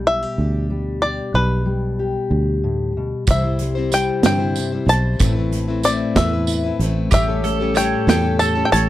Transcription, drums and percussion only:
3.27 kick medium
3.27 closed hi-hat medium
3.27 tambourine medium
3.59 closed hi-hat medium
3.92 closed hi-hat medium
3.92 tambourine medium
4.23 snare loud
4.23 closed hi-hat medium
4.56 closed hi-hat soft
4.56 tambourine medium
4.89 closed hi-hat soft
5.19 kick loud
5.19 closed hi-hat medium
5.19 tambourine medium
5.53 closed hi-hat medium
5.83 closed hi-hat medium
5.83 tambourine medium
6.16 kick medium
6.16 snare loud
6.16 closed hi-hat medium
6.47 closed hi-hat medium
6.47 tambourine medium
6.80 closed hi-hat medium
7.11 kick medium
7.11 closed hi-hat medium
7.11 tambourine medium
7.45 closed hi-hat medium
7.76 closed hi-hat medium
7.76 tambourine medium
8.09 snare loud
8.09 closed hi-hat medium
8.40 closed hi-hat medium
8.40 tambourine medium
8.73 closed hi-hat medium

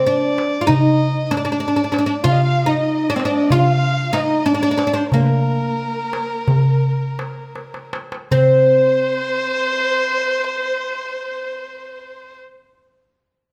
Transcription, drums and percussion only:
0.07 darbuka ka soft
0.38 darbuka tek medium
0.69 darbuka dum medium
1.01 darbuka ka soft
1.31 darbuka tek medium
1.94 darbuka tek medium
2.25 darbuka dum medium
2.57 darbuka ka soft
2.74 darbuka ka soft
2.89 darbuka ka soft
3.20 darbuka tek medium
3.50 darbuka dum medium
3.83 darbuka ka soft
4.14 darbuka tek medium
4.79 darbuka tek medium
5.12 darbuka dum medium
5.61 darbuka ka soft
5.79 darbuka ka soft
6.13 darbuka tek medium
6.48 darbuka dum medium
6.83 darbuka ka soft
7.19 darbuka tek medium
7.56 darbuka tek soft
7.74 darbuka ka medium
7.93 darbuka tek medium
8.12 darbuka ka medium
8.31 darbuka dum medium

